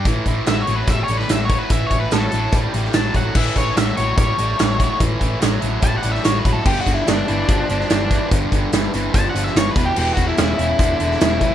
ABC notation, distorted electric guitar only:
X:1
M:4/4
L:1/8
Q:1/4=145
K:Amix
V:1 name="Distorted electric guitar" clef=bass
[A,,E,] [A,,E,] [A,,F,] [A,,F,] [A,,G,] [A,,G,] [A,,F,] [A,,F,] | [A,,E,] [A,,E,] [A,,F,] [A,,F,] [A,,G,] [A,,G,] [A,,F,] [A,,F,] | [A,,E,] [A,,E,] [A,,F,] [A,,F,] [A,,G,] [A,,G,] [A,,F,] [A,,F,] | [A,,E,] [A,,E,] [A,,F,] [A,,F,] [A,,G,] [A,,G,] [A,,F,] [A,,F,] |
[G,,D,] [G,,D,] [G,,E,] [G,,E,] [G,,=F,] [G,,F,] [G,,E,] [G,,E,] | [G,,D,] [G,,D,] [G,,E,] [G,,E,] [G,,=F,] [G,,F,] [G,,E,] [E,,B,,] | [E,,B,,] [E,,B,,] [E,,C,] [E,,C,] [E,,D,] [E,,D,] [E,,C,] [E,,C,] |]